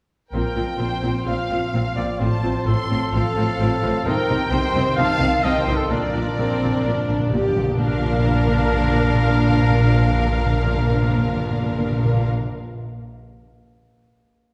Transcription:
0.31 A#1 A#2 F3 C4 F4 A#4 G5
0.56 A#1 A#2 C4 F4
0.78 A#1 A#2 F3 C4 F4 C5
1.03 A#1 A#2 C4 F4
1.26 A#1 A#2 F3 C4 F4 F5
1.50 A#1 A#2 C4 F4
1.73 A#1 A#2 C4 F4
1.96 A#1 A#2 C4 F4 D5
2.19 A1 A2 F3 C4 F4 C5 A5
2.42 A1 A2 C4 F4
2.66 A1 A2 F3 C4 F4 A4 C6
2.89 A1 A2 C4 F4
3.13 A1 A2 C4 F4 F5
3.36 A1 A2 C4 F4
3.58 A1 A2 C4 F4
3.83 A1 A2 C4 F4
4.05 C2 C3 D#3 C4 D#4 A#4 G5
4.28 C2 C3 C4 D#4
4.51 C2 C3 D#3 C4 D#4 C5
4.74 C2 C3 C4 D#4
4.96 C2 C3 C4 D#4 F5 A5
5.20 C2 C3 C4 D#4
5.43 C2 C3 D#3 C4 D#4 D#5 G5
5.59 C5
5.67 C2 C3 C4 D#4
5.74 A4
5.89 A#1 A#2 F3 D4 F4 A#4 D5
5.97 A#2
6.05 A#2
6.12 A#1 A#2 D4 F4
6.21 A#2
6.29 A#2
6.36 A#1 A#2 C4
6.44 A#2
6.51 A#2
6.57 A#1 A#2
6.63 A#2
6.74 A#2
6.81 A#1 A#2 D4
6.86 A#2
6.96 A#2
7.03 A#2
7.08 A#1 A#2
7.19 A#2
7.26 A#2
7.32 A#1 A#2 G4
7.41 A#2
7.48 A#2
7.56 A#1 A#2
7.64 A#2
7.77 A#1 A#2 F3 D4 A#4 F5
7.84 A#2
7.92 A#2
7.98 A#2
8.05 A#2
8.13 A#2
8.19 A#2
8.26 A#2
8.33 A#2
8.40 A#2
8.47 A#2
8.54 A#2
8.60 A#2
8.67 A#2
8.73 A#2
8.80 A#2
8.87 A#2
8.95 A#2
9.02 A#2
9.09 A#2
9.15 A#2
9.21 A#2
9.28 A#2
9.35 A#2
9.42 A#2
9.49 A#2
9.56 A#2
9.63 A#2
9.70 A#2
9.77 A#2
9.84 A#2
9.91 A#2
9.98 A#2
10.05 A#2
10.12 A#2
10.19 A#2
10.25 A#2
10.32 A#2
10.39 A#2
10.46 A#2
10.53 A#2
10.60 A#2
10.66 A#2
10.73 A#2
10.80 A#2
10.87 A#2
10.94 A#2
11.02 A#2
11.09 A#2
11.16 A#2
11.23 A#2
11.29 A#2
11.36 A#2
11.44 A#2
11.51 A#2
11.58 A#2
11.64 A#2
11.71 A#2
11.78 A#2
11.85 A#2
11.92 A#2
11.98 A#2
12.05 A#2
12.13 A#2
12.19 A#2

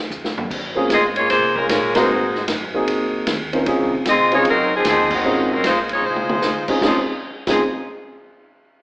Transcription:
0.10 F2, hi-hat pedal
0.25 snare
0.36 muted upright bass stroke, floor tom
0.50 F#2, kick, crash
0.75 A#3 C4 C#4 F4 G#4
0.89 G#2 C4 F4 G#4 D#5, kick, snare, hi-hat pedal, ride
1.16 A#3 F4 G#4 C#5, ride
1.30 C3 A#3 F4 G#4 C5, kick, snare, ride
1.56 G#3 C#4 F4 A#4, kick
1.69 A#2 G#3 C#4 F4 A#4, kick, snare, hi-hat pedal, ride
1.95 G#3 A#3 C4 D#4 F#4 A#4 C5, snare, ride
2.08 G#2
2.35 snare
2.48 F#2, kick, snare, hi-hat pedal, ride
2.74 A#3 C4 D#4 F#4 G#4
2.87 F2, kick, ride
3.27 D#2, kick, snare, hi-hat pedal, ride
3.53 C4 C#4 D#4 F4 A#4, ride
3.66 C#2 C4 C#4 D#4 F4 G#4, kick, ride
3.80 C2
3.92 G#1
4.05 C2 C4 F4 G#4 D#5, kick, snare, hi-hat pedal, ride
4.32 G#3 C4 C#4 D#4 F4 G#4 C#5, ride
4.45 C#2, kick, ride
4.49 F#3 C4 D#4 A#4
4.75 F3 C4 D#4 G#4
4.85 D#2 F3 C4 D#4 G#4, kick, snare, hi-hat pedal, ride
5.10 G#3 C4 F#4, kick, crash
5.15 D#3
5.24 G#1 C4 C#4 D#4 F4 G#4
5.52 F#3 C4 D#4 A#4
5.64 A#1 G#3 D#4 F4 C5, kick, snare, hi-hat pedal, ride
5.89 G#3 D#4 C#5, ride
5.94 F4
6.02 C2
6.06 G#3 D#4 F4 C5
6.16 mid tom
6.29 mid tom
6.42 D2, snare, hi-hat pedal
6.68 C4 C#4 D#4 F4 G#4, muted upright bass stroke, kick, crash
6.81 C#2 F3 C4 C#4 D#4 F4 G#4, kick, snare
7.47 C#2 F3 C4 C#4 D#4 F4 G#4, kick, snare, crash

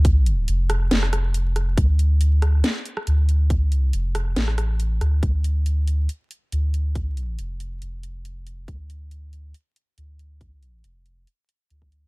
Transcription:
Already playing: D2
0.05 kick, closed hi-hat
0.26 closed hi-hat
0.48 F1, closed hi-hat
0.70 cross-stick, closed hi-hat
0.91 F1, snare, closed hi-hat
1.03 cross-stick
1.13 cross-stick, closed hi-hat
1.34 closed hi-hat
1.56 cross-stick, closed hi-hat
1.77 D2, kick, closed hi-hat
1.99 closed hi-hat
2.21 closed hi-hat
2.42 cross-stick, closed hi-hat
2.64 snare, closed hi-hat
2.85 closed hi-hat
2.97 cross-stick
3.07 D2, closed hi-hat
3.29 closed hi-hat
3.50 kick, closed hi-hat
3.67 C#2
3.72 closed hi-hat
3.93 F1, closed hi-hat
4.15 cross-stick, closed hi-hat
4.36 A1, snare, closed hi-hat
4.48 cross-stick
4.58 cross-stick, closed hi-hat
4.80 closed hi-hat
5.01 D2, cross-stick, closed hi-hat
5.23 D2, kick, closed hi-hat
5.44 closed hi-hat
5.66 closed hi-hat
5.88 closed hi-hat
6.09 closed hi-hat
6.31 closed hi-hat
6.52 D2, closed hi-hat
6.74 closed hi-hat
6.95 kick, closed hi-hat
7.17 closed hi-hat
7.38 F1, closed hi-hat
7.60 closed hi-hat
7.82 F1, closed hi-hat
8.03 closed hi-hat
8.25 closed hi-hat
8.47 closed hi-hat
8.68 D2, kick, closed hi-hat
8.90 closed hi-hat
9.11 closed hi-hat
9.33 closed hi-hat
9.54 closed hi-hat
9.76 closed hi-hat
9.97 D2, closed hi-hat
10.19 closed hi-hat
10.41 kick, closed hi-hat
10.63 closed hi-hat
10.84 F1, closed hi-hat
11.06 closed hi-hat
11.27 closed hi-hat
11.49 closed hi-hat
11.70 D2, closed hi-hat
11.82 kick
11.92 closed hi-hat

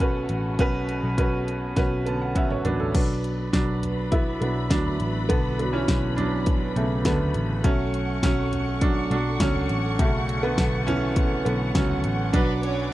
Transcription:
Already playing: B1 B2 C#3 A3 F#4 A4
0.00 C#4 F#4 B4, kick, closed hi-hat
0.29 A1, closed hi-hat
0.59 B1 B2 C#4 F#4 B4, kick, closed hi-hat
0.89 closed hi-hat
1.03 B1
1.18 C#4 F#4 B4, kick, closed hi-hat
1.48 closed hi-hat
1.76 B1 C#4 F#4 B4, kick, snare, closed hi-hat
2.06 D3 B3 A5, closed hi-hat
2.22 F#5
2.35 F#3 C#4 E5 F#5, kick, closed hi-hat
2.51 C#5, mid tom
2.65 A1 F#3 D4 B4, closed hi-hat, floor tom
2.80 A4, floor tom
2.94 B1 F#3 B3 D4 F#4 B4 B5, kick, closed hi-hat, crash
3.24 closed hi-hat
3.53 B1 F#3 D4, kick, snare, closed hi-hat
3.83 closed hi-hat, floor tom
4.12 B3 E4, kick, closed hi-hat
4.41 B1 F#3 B3 D4, closed hi-hat
4.70 D2 F#3 D4, kick, snare, closed hi-hat
4.86 floor tom
5.00 A1, closed hi-hat
5.29 B1 D3 B3, kick, closed hi-hat
5.59 F#3 B3 D4, closed hi-hat
5.73 E3 C#4
5.88 B1, kick, snare, closed hi-hat
6.16 F#3 D4, closed hi-hat, floor tom
6.46 kick, closed hi-hat
6.76 B1 C#3 A3, closed hi-hat
7.05 D2 D3 F#3 B3 D4, kick, snare, closed hi-hat
7.20 floor tom
7.34 A1, closed hi-hat
7.64 B1 F#3 A3 C#4 A4 F#5 C#6, kick, closed hi-hat
7.94 closed hi-hat
8.23 B1 F#3 C#4, kick, snare, closed hi-hat
8.52 closed hi-hat, floor tom
8.81 F#3 D4, kick, closed hi-hat
9.11 B1 F#3 D4, closed hi-hat
9.40 C#2 F#3 C#4, kick, snare, closed hi-hat
9.55 floor tom
9.69 A1, closed hi-hat
9.99 B1 C#3 F#3 A3 C#4, kick, closed hi-hat
10.29 closed hi-hat
10.43 D3 B3
10.58 B1, kick, snare, closed hi-hat
10.87 E3 C#4, closed hi-hat, floor tom
11.16 kick, closed hi-hat
11.45 B1 D3 B3, closed hi-hat
11.75 C#2 F#3 C#4, kick, snare, closed hi-hat
11.90 floor tom
12.04 A1, closed hi-hat
12.33 B1 F#3 B3 D4 B4 D6, kick, closed hi-hat
12.63 C#4 C#5, closed hi-hat

